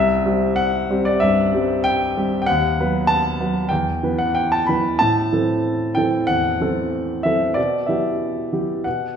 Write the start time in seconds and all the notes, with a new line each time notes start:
Already playing: C2 E5
0.25 G3 C4 G4
0.56 F#5
0.90 G3 C4 G4
1.05 D5
1.20 G2 E5
1.54 G3 C4 G4
1.84 G5
2.17 G3 C4 G4
2.42 G5
2.46 D#2 F#5
2.79 F#3 B3 B4
3.07 A5
3.40 F#3 B3 B4
3.69 E2 G5
4.03 E3 B3 B4
4.18 F#5
4.35 G5
4.52 A5
4.67 E3 B3 B4 B5
4.99 A2 A5
5.33 E3 C4 A4
5.95 E3 C4 A4 G5
6.27 E2 F#5
6.61 E3 C4 A4
7.23 E3 C4 A4 E5
7.54 B2 D5
7.86 E3 B3 G4 E5
8.53 E3 B3 G4
8.84 B2 F#5